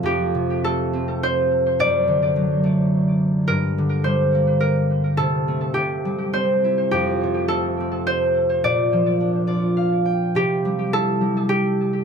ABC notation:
X:1
M:3/4
L:1/16
Q:1/4=105
K:F
V:1 name="Harp"
G4 A4 c4 | d8- d2 z2 | B4 c4 B4 | A4 G4 c3 z |
G4 A4 c4 | d8- d2 z2 | G4 A4 G4 |]
V:2 name="Harp"
z12 | z12 | z12 | z12 |
z12 | z6 d2 f2 g2 | z12 |]
V:3 name="Harp" clef=bass
F,,2 C,2 A,2 C6 | ^F,,2 D,2 ^F,2 A,6 | G,,2 D,2 G,2 B,6 | C,2 A,2 C,2 G,2 C2 E2 |
F,,2 C,2 A,2 C6 | B,,2 F,2 D2 F6 | C,2 G,2 E2 G,6 |]